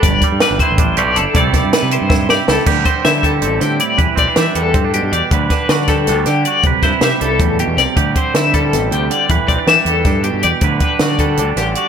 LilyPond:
<<
  \new Staff \with { instrumentName = "Clean electric guitar" } { \time 7/8 \key g \major \tempo 4 = 158 d''4 b'8 c''4 d''8 a'8 | d''4 b'8 c''4 d''8 a'8 | r8 c''8 e''8 a'4 g'8 d''8 | r8 d''8 e''8 a'4 g'8 d''8 |
r8 b'8 d''8 a'4 g'8 d''8 | r8 c''8 e''8 a'4 g'8 d''8 | r8 c''8 e''8 a'4 g'8 d''8 | r8 d''8 e''8 a'4 g'8 d''8 |
r8 b'8 d''8 a'4 g'8 d''8 | }
  \new Staff \with { instrumentName = "Clean electric guitar" } { \time 7/8 \key g \major << { r4 d'8 e'8 d'8 g'8 d'8 | <g e' g' a'>4 e'8 g'8 e'8 g'8 e'8 | g'8 c'8 e'4 c'4 e'8 | b'8 c'16 d'16 g'4 c'16 d'8. g'8 |
b'8 d'8 fis'4 d'4 fis'8 | b'8 e'8 g'2~ g'8 | g'8 c'8 e'2~ e'8 | b'8 c'16 d'16 g'4 d'4 g'8 |
b'8 d'8 fis'4 d'4 fis'8 | } \\ { <g, g>8 g2. | c8 g2. | d4. g4 a,4 | e4. g4 b,4 |
d4. g4 d4 | c4. g8 a,8 b,8 c8 | d4. g8 b,8 c8 d8 | e4. g4 b,4 |
d4. g4 d4 | } >> }
  \new Staff \with { instrumentName = "Fingered electric bass" } { \clef bass \time 7/8 \key g \major g,,8 r16 g,16 r16 g,,16 r16 a,,8. b,,8 g,,16 r16 | c,8. g,16 r16 c8 g,8. g,16 r16 cis,16 r16 | d,8 r8 d4 a,,8 d8 r8 | e,16 r16 b,,16 r16 e16 r16 e,8 g,8. g,16 e,16 r16 |
d,8 r8 d4 d,8 d8 r8 | c,16 r16 g,16 r16 c16 r16 c,8 e,8. e,16 c,16 r16 | d,8 r8 d4 a,,8 d,8 r8 | e,16 r16 b,,16 r16 e16 r16 e,8 g,8. g,16 e,16 r16 |
d,8 r8 d4 d,8 a,,8 r8 | }
  \new DrumStaff \with { instrumentName = "Drums" } \drummode { \time 7/8 <hh bd>8 <hh bd>8 <hh sn>8 <hh bd>8 <hh bd>8 hh8 hh8 | <hh bd>8 <hh bd sn>8 <hh sn>8 hh8 <bd sn>8 sn8 sn8 | <cymc bd>8 <hh bd>8 <hh sn>8 <hh bd>8 hh8 <hh sn>8 hh8 | <hh bd>8 <hh bd>8 <hh sn>8 hh8 <hh bd>8 hh8 hh8 |
<hh bd>8 <hh bd sn>8 <hh sn>8 <hh bd sn>8 <hh sn>8 <hh sn>8 hh8 | <hh bd>8 <hh bd sn>8 <hh sn>8 hh8 <hh bd>8 hh8 <hh sn>8 | <hh bd>8 <hh bd>8 <hh sn>8 <hh bd>8 <hh sn>8 hh8 hh8 | <hh bd>8 <hh bd>8 <hh sn>8 hh8 <hh bd sn>8 hh8 hh8 |
<hh bd>8 <hh bd>8 <hh sn>8 <hh bd>8 hh8 <hh sn>8 hh8 | }
>>